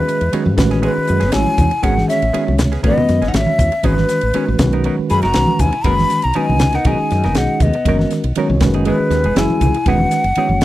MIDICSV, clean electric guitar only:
0, 0, Header, 1, 3, 480
1, 0, Start_track
1, 0, Key_signature, 5, "minor"
1, 0, Tempo, 502092
1, 794, Time_signature, 4, 2, 24, 8
1, 10179, End_track
2, 0, Start_track
2, 0, Title_t, "Clean electric guitar"
2, 0, Program_c, 0, 27
2, 314, Note_on_c, 0, 54, 58
2, 319, Note_on_c, 0, 59, 61
2, 323, Note_on_c, 0, 63, 71
2, 323, Note_on_c, 0, 68, 64
2, 427, Note_off_c, 0, 68, 0
2, 429, Note_off_c, 0, 63, 0
2, 433, Note_off_c, 0, 59, 0
2, 439, Note_off_c, 0, 54, 0
2, 679, Note_on_c, 0, 68, 51
2, 685, Note_on_c, 0, 61, 47
2, 689, Note_on_c, 0, 59, 36
2, 775, Note_off_c, 0, 59, 0
2, 780, Note_off_c, 0, 61, 0
2, 781, Note_off_c, 0, 68, 0
2, 786, Note_on_c, 0, 51, 73
2, 786, Note_on_c, 0, 59, 72
2, 791, Note_on_c, 0, 61, 82
2, 793, Note_on_c, 0, 68, 95
2, 906, Note_off_c, 0, 68, 0
2, 908, Note_off_c, 0, 61, 0
2, 911, Note_off_c, 0, 59, 0
2, 915, Note_off_c, 0, 51, 0
2, 1149, Note_on_c, 0, 68, 57
2, 1160, Note_on_c, 0, 61, 52
2, 1162, Note_on_c, 0, 59, 46
2, 1253, Note_off_c, 0, 59, 0
2, 1256, Note_off_c, 0, 61, 0
2, 1259, Note_off_c, 0, 68, 0
2, 1749, Note_on_c, 0, 51, 76
2, 1752, Note_on_c, 0, 59, 81
2, 1753, Note_on_c, 0, 61, 77
2, 1760, Note_on_c, 0, 68, 74
2, 1869, Note_off_c, 0, 61, 0
2, 1870, Note_off_c, 0, 68, 0
2, 1876, Note_off_c, 0, 59, 0
2, 1877, Note_off_c, 0, 51, 0
2, 2231, Note_on_c, 0, 51, 52
2, 2231, Note_on_c, 0, 59, 60
2, 2235, Note_on_c, 0, 61, 69
2, 2240, Note_on_c, 0, 68, 70
2, 2348, Note_off_c, 0, 61, 0
2, 2348, Note_off_c, 0, 68, 0
2, 2350, Note_off_c, 0, 59, 0
2, 2358, Note_off_c, 0, 51, 0
2, 2599, Note_on_c, 0, 68, 50
2, 2602, Note_on_c, 0, 61, 42
2, 2607, Note_on_c, 0, 59, 41
2, 2698, Note_off_c, 0, 59, 0
2, 2700, Note_off_c, 0, 61, 0
2, 2704, Note_off_c, 0, 68, 0
2, 2707, Note_on_c, 0, 51, 71
2, 2709, Note_on_c, 0, 59, 78
2, 2711, Note_on_c, 0, 61, 75
2, 2715, Note_on_c, 0, 68, 80
2, 2822, Note_off_c, 0, 68, 0
2, 2826, Note_off_c, 0, 59, 0
2, 2827, Note_off_c, 0, 61, 0
2, 2836, Note_off_c, 0, 51, 0
2, 3075, Note_on_c, 0, 68, 54
2, 3080, Note_on_c, 0, 61, 46
2, 3089, Note_on_c, 0, 59, 47
2, 3184, Note_off_c, 0, 59, 0
2, 3186, Note_off_c, 0, 68, 0
2, 3188, Note_off_c, 0, 61, 0
2, 3669, Note_on_c, 0, 51, 66
2, 3671, Note_on_c, 0, 59, 79
2, 3675, Note_on_c, 0, 61, 68
2, 3681, Note_on_c, 0, 68, 73
2, 3783, Note_off_c, 0, 68, 0
2, 3784, Note_off_c, 0, 61, 0
2, 3786, Note_off_c, 0, 59, 0
2, 3797, Note_off_c, 0, 51, 0
2, 4155, Note_on_c, 0, 51, 53
2, 4158, Note_on_c, 0, 59, 62
2, 4163, Note_on_c, 0, 61, 61
2, 4169, Note_on_c, 0, 68, 59
2, 4266, Note_off_c, 0, 68, 0
2, 4272, Note_off_c, 0, 61, 0
2, 4278, Note_off_c, 0, 59, 0
2, 4279, Note_off_c, 0, 51, 0
2, 4525, Note_on_c, 0, 63, 49
2, 4525, Note_on_c, 0, 70, 48
2, 4529, Note_on_c, 0, 59, 44
2, 4631, Note_off_c, 0, 59, 0
2, 4637, Note_off_c, 0, 63, 0
2, 4637, Note_off_c, 0, 70, 0
2, 4638, Note_on_c, 0, 54, 82
2, 4642, Note_on_c, 0, 59, 87
2, 4648, Note_on_c, 0, 63, 80
2, 4648, Note_on_c, 0, 70, 79
2, 4750, Note_off_c, 0, 70, 0
2, 4754, Note_off_c, 0, 63, 0
2, 4757, Note_off_c, 0, 59, 0
2, 4761, Note_off_c, 0, 54, 0
2, 4997, Note_on_c, 0, 70, 59
2, 5003, Note_on_c, 0, 63, 49
2, 5010, Note_on_c, 0, 59, 47
2, 5105, Note_off_c, 0, 59, 0
2, 5109, Note_off_c, 0, 63, 0
2, 5113, Note_off_c, 0, 70, 0
2, 5592, Note_on_c, 0, 54, 73
2, 5593, Note_on_c, 0, 59, 82
2, 5596, Note_on_c, 0, 63, 70
2, 5597, Note_on_c, 0, 70, 79
2, 5694, Note_off_c, 0, 70, 0
2, 5697, Note_off_c, 0, 63, 0
2, 5699, Note_off_c, 0, 59, 0
2, 5718, Note_off_c, 0, 54, 0
2, 6073, Note_on_c, 0, 54, 58
2, 6074, Note_on_c, 0, 59, 67
2, 6075, Note_on_c, 0, 63, 60
2, 6080, Note_on_c, 0, 70, 65
2, 6186, Note_off_c, 0, 70, 0
2, 6191, Note_off_c, 0, 59, 0
2, 6193, Note_off_c, 0, 63, 0
2, 6198, Note_off_c, 0, 54, 0
2, 6448, Note_on_c, 0, 70, 51
2, 6453, Note_on_c, 0, 63, 48
2, 6460, Note_on_c, 0, 59, 43
2, 6548, Note_off_c, 0, 59, 0
2, 6552, Note_off_c, 0, 63, 0
2, 6552, Note_off_c, 0, 70, 0
2, 6554, Note_on_c, 0, 54, 72
2, 6559, Note_on_c, 0, 59, 75
2, 6563, Note_on_c, 0, 63, 69
2, 6564, Note_on_c, 0, 70, 80
2, 6679, Note_off_c, 0, 54, 0
2, 6679, Note_off_c, 0, 70, 0
2, 6681, Note_off_c, 0, 59, 0
2, 6683, Note_off_c, 0, 63, 0
2, 6923, Note_on_c, 0, 70, 60
2, 6928, Note_on_c, 0, 63, 48
2, 6935, Note_on_c, 0, 59, 51
2, 7033, Note_off_c, 0, 59, 0
2, 7035, Note_off_c, 0, 70, 0
2, 7038, Note_off_c, 0, 63, 0
2, 7535, Note_on_c, 0, 54, 76
2, 7538, Note_on_c, 0, 59, 68
2, 7541, Note_on_c, 0, 63, 73
2, 7541, Note_on_c, 0, 70, 89
2, 7635, Note_off_c, 0, 70, 0
2, 7636, Note_off_c, 0, 63, 0
2, 7639, Note_off_c, 0, 59, 0
2, 7649, Note_off_c, 0, 54, 0
2, 8007, Note_on_c, 0, 54, 65
2, 8009, Note_on_c, 0, 59, 68
2, 8015, Note_on_c, 0, 63, 68
2, 8020, Note_on_c, 0, 70, 82
2, 8123, Note_off_c, 0, 59, 0
2, 8123, Note_off_c, 0, 70, 0
2, 8124, Note_off_c, 0, 63, 0
2, 8125, Note_off_c, 0, 54, 0
2, 8359, Note_on_c, 0, 68, 48
2, 8365, Note_on_c, 0, 63, 42
2, 8371, Note_on_c, 0, 59, 36
2, 8467, Note_off_c, 0, 59, 0
2, 8471, Note_off_c, 0, 63, 0
2, 8473, Note_off_c, 0, 68, 0
2, 8477, Note_on_c, 0, 52, 70
2, 8479, Note_on_c, 0, 59, 71
2, 8482, Note_on_c, 0, 63, 76
2, 8484, Note_on_c, 0, 68, 74
2, 8594, Note_off_c, 0, 68, 0
2, 8598, Note_off_c, 0, 59, 0
2, 8599, Note_off_c, 0, 52, 0
2, 8599, Note_off_c, 0, 63, 0
2, 8849, Note_on_c, 0, 68, 63
2, 8852, Note_on_c, 0, 63, 50
2, 8857, Note_on_c, 0, 59, 43
2, 8958, Note_off_c, 0, 59, 0
2, 8958, Note_off_c, 0, 68, 0
2, 8960, Note_off_c, 0, 63, 0
2, 9445, Note_on_c, 0, 52, 64
2, 9448, Note_on_c, 0, 59, 74
2, 9450, Note_on_c, 0, 63, 74
2, 9456, Note_on_c, 0, 68, 83
2, 9553, Note_off_c, 0, 68, 0
2, 9558, Note_off_c, 0, 63, 0
2, 9561, Note_off_c, 0, 59, 0
2, 9563, Note_off_c, 0, 52, 0
2, 9919, Note_on_c, 0, 52, 63
2, 9921, Note_on_c, 0, 59, 65
2, 9922, Note_on_c, 0, 63, 68
2, 9926, Note_on_c, 0, 68, 72
2, 10026, Note_off_c, 0, 68, 0
2, 10031, Note_off_c, 0, 63, 0
2, 10036, Note_off_c, 0, 59, 0
2, 10040, Note_off_c, 0, 52, 0
2, 10179, End_track
3, 0, Start_track
3, 0, Title_t, "Muted clean electric guitar strokes"
3, 78, Note_on_c, 9, 29, 37
3, 174, Note_off_c, 9, 29, 0
3, 438, Note_on_c, 9, 29, 44
3, 534, Note_off_c, 9, 29, 0
3, 549, Note_on_c, 9, 29, 42
3, 645, Note_off_c, 9, 29, 0
3, 917, Note_on_c, 9, 29, 37
3, 1013, Note_off_c, 9, 29, 0
3, 1030, Note_on_c, 9, 29, 40
3, 1125, Note_off_c, 9, 29, 0
3, 1265, Note_on_c, 9, 29, 38
3, 1360, Note_off_c, 9, 29, 0
3, 1636, Note_on_c, 9, 29, 42
3, 1732, Note_off_c, 9, 29, 0
3, 1881, Note_on_c, 9, 29, 37
3, 1977, Note_off_c, 9, 29, 0
3, 1983, Note_on_c, 9, 29, 32
3, 2079, Note_off_c, 9, 29, 0
3, 2359, Note_on_c, 9, 29, 40
3, 2455, Note_off_c, 9, 29, 0
3, 2470, Note_on_c, 9, 29, 37
3, 2566, Note_off_c, 9, 29, 0
3, 2954, Note_on_c, 9, 29, 37
3, 3049, Note_off_c, 9, 29, 0
3, 3559, Note_on_c, 9, 29, 39
3, 3655, Note_off_c, 9, 29, 0
3, 3795, Note_on_c, 9, 29, 42
3, 3890, Note_off_c, 9, 29, 0
3, 3909, Note_on_c, 9, 29, 33
3, 4005, Note_off_c, 9, 29, 0
3, 4278, Note_on_c, 9, 29, 41
3, 4373, Note_off_c, 9, 29, 0
3, 4394, Note_on_c, 9, 29, 46
3, 4490, Note_off_c, 9, 29, 0
3, 4761, Note_on_c, 9, 29, 44
3, 4857, Note_off_c, 9, 29, 0
3, 4880, Note_on_c, 9, 29, 43
3, 4976, Note_off_c, 9, 29, 0
3, 5476, Note_on_c, 9, 29, 39
3, 5572, Note_off_c, 9, 29, 0
3, 5706, Note_on_c, 9, 29, 40
3, 5801, Note_off_c, 9, 29, 0
3, 5825, Note_on_c, 9, 29, 37
3, 5920, Note_off_c, 9, 29, 0
3, 6321, Note_on_c, 9, 29, 43
3, 6416, Note_off_c, 9, 29, 0
3, 6691, Note_on_c, 9, 29, 44
3, 6786, Note_off_c, 9, 29, 0
3, 6804, Note_on_c, 9, 29, 37
3, 6899, Note_off_c, 9, 29, 0
3, 7043, Note_on_c, 9, 29, 40
3, 7139, Note_off_c, 9, 29, 0
3, 7409, Note_on_c, 9, 29, 44
3, 7505, Note_off_c, 9, 29, 0
3, 7646, Note_on_c, 9, 29, 41
3, 7742, Note_off_c, 9, 29, 0
3, 7766, Note_on_c, 9, 29, 38
3, 7862, Note_off_c, 9, 29, 0
3, 8238, Note_on_c, 9, 29, 42
3, 8333, Note_off_c, 9, 29, 0
3, 8605, Note_on_c, 9, 29, 45
3, 8701, Note_off_c, 9, 29, 0
3, 8718, Note_on_c, 9, 29, 40
3, 8814, Note_off_c, 9, 29, 0
3, 8972, Note_on_c, 9, 29, 38
3, 9068, Note_off_c, 9, 29, 0
3, 9332, Note_on_c, 9, 29, 42
3, 9428, Note_off_c, 9, 29, 0
3, 9564, Note_on_c, 9, 29, 41
3, 9660, Note_off_c, 9, 29, 0
3, 9676, Note_on_c, 9, 29, 38
3, 9772, Note_off_c, 9, 29, 0
3, 10038, Note_on_c, 9, 29, 37
3, 10134, Note_off_c, 9, 29, 0
3, 10179, End_track
0, 0, End_of_file